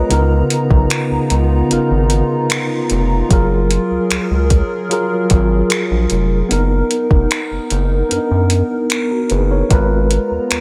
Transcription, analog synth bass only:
0.11 0.42 C#2 loud
0.71 0.86 B1 medium
1.11 1.19 C#2 soft
1.31 1.62 C#2 medium
1.71 1.79 G#1 soft
1.91 2.22 G#1 loud
2.91 3.22 F1 loud
3.31 3.78 F#1 loud
3.91 3.99 C#2 soft
4.11 4.19 C#2 soft
4.31 4.62 C#2 medium
5.31 5.62 G#1 loud
5.91 6.07 A#1 medium
6.11 6.42 F1 loud
6.51 6.82 F#1 loud
7.11 7.27 F1 medium
7.51 7.59 F#1 soft
7.71 8.02 F#1 medium
8.11 8.19 F#2 soft
8.31 8.62 F#2 medium
9.31 9.62 F#1 medium
9.71 10.18 G#1 loud
10.31 10.39 D#2 soft
10.51 10.59 D#2 soft

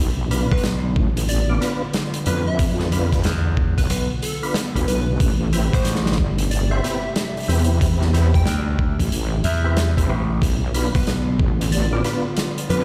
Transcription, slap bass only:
0.52 0.94 B1 loud
3.25 3.74 E2 loud
3.90 4.07 B1 medium
5.73 6.16 A1 loud
8.47 8.96 D2 medium
9.44 9.94 E2 loud
10.09 10.40 A1 loud
10.95 11.38 B1 loud

